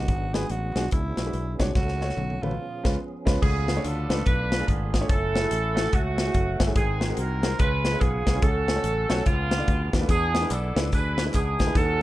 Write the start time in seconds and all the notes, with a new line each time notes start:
Already playing: F#4
0.08 G#1 G#2 F#3 B3 D4 G#4, kick, closed hi-hat
0.33 G#3 D4 F#4 G#4 B4, snare, closed hi-hat
0.50 A1 F#4, closed hi-hat
0.75 B1 G#3 D4 F#4 G#4, snare, closed hi-hat
0.91 C#2 E4, kick, closed hi-hat
1.17 B1 F#4 D5, snare, closed hi-hat
1.25 G#3 D4 F#4 B4
1.33 B1, closed hi-hat
1.59 C2 G#3 D4 F#4 C#5, kick, snare, closed hi-hat
1.75 C#2 C#3 A3 C#4 F#4 A4, kick, snare
1.88 snare
2.01 A3 C#4 F#4 C#5, snare
2.10 snare
2.17 B1, high tom
2.30 high tom
2.42 A1 A3 C#4 F4 F#4 B4, high tom
2.51 mid tom
2.60 F3 B3 G#4
2.83 C#2 G#3 C#4 F4 B4, kick, snare, crash
3.25 C#2 G#3 C#4 F4 B4, kick, snare, crash
3.42 C#2 C#3 A3 B3 F4 G#4 D5 F5 B5, kick, crash
3.68 F4 B4, snare, closed hi-hat
3.76 A3 D4 F4 C#5
3.84 D2 D4 F4 A4, closed hi-hat
4.09 C#2 A3 D4 F4 B4, snare, closed hi-hat
4.26 B1 D4 F4 B4, kick, closed hi-hat
4.51 F4 B4, snare, closed hi-hat
4.59 A3 D4 F4 G#4
4.68 G#1 B3 F4 G#4, kick, closed hi-hat
4.92 F4 G#4, kick, snare, closed hi-hat
5.00 A3 D4 F4 C#5
5.09 F#1 C#4 E4 A4 E5 F#5 C#6, kick, closed hi-hat
5.34 F#4 C#5, snare, closed hi-hat
5.42 A3 E4 F#4 G#4
5.51 A1, closed hi-hat
5.75 A3 E4 F#4 A4, snare, closed hi-hat
5.93 C#2 A3 C#4 F#4, kick, closed hi-hat
6.17 F#4 E5, snare, closed hi-hat
6.26 A3 E4 F#4 G#4
6.34 F#1, kick, closed hi-hat
6.58 G1 F#4 C#5, kick, snare, closed hi-hat
6.67 A3 E4 F#4 G#4
6.75 G#1 G#2 C4 D#4 G#4 A#4 F#5 G#5 C6, kick, closed hi-hat
7.00 F#4 A#4, snare, closed hi-hat
7.09 G#3 C4 F#4 A#4
7.17 C2 D#4 F#4 A#4, closed hi-hat
7.42 G#3 C4 F#4 A#4, snare, closed hi-hat
7.59 C#2 C#3 F4 G#4 B4 F5 C#6, kick, closed hi-hat
7.84 F4 B4, snare, closed hi-hat
7.93 G#3 C#4 F4 B4
8.01 B1 B3 F4 G#4, kick, closed hi-hat
8.27 C2 F4 B4, kick, snare, closed hi-hat
8.35 G#3 C#4 F4 G#4
8.42 C#2 C#3 C#4 F#4 A4 C#5 F#5, kick, closed hi-hat
8.67 F#4 C#5, snare, closed hi-hat
8.75 A3 C#4 F#4 C#5
8.84 A1, closed hi-hat
9.09 B1 A3 C#4 F#4 C#5, snare, closed hi-hat
9.26 C#2 C#3 G#3 B3 F4 B4 F5 A5 D6, kick, closed hi-hat
9.51 F4 B4, snare, closed hi-hat
9.58 A3 D4 F4 D5
9.68 D2, kick, closed hi-hat
9.92 D#2 F4 B4, kick, snare, closed hi-hat
9.99 A3 D4 F4 B4
10.08 E2 E3 B3 D4 G#4 B4 E5 G#5, kick, closed hi-hat, tambourine
10.33 E4 B4, snare, closed hi-hat, tambourine
10.42 G#3 D4 E4 B4
10.50 B1 D4 A4, clap, closed hi-hat, tambourine
10.75 C#2 G#3 D4 E4 B4, snare, closed hi-hat, tambourine
10.92 D2 D4 G#4 B4, kick, closed hi-hat, tambourine
11.17 E4 B4, snare, closed hi-hat, tambourine
11.25 G#3 D4 E4 B4
11.34 C#2 B3 D4 G#4, kick, clap, closed hi-hat, tambourine
11.58 D2 E4 F#4, kick, snare, closed hi-hat, tambourine
11.66 G#3 D4 E4 B4
11.75 D#2 D#3 C#4 F#4 A4 D#5 A5 C#6, kick, closed hi-hat, tambourine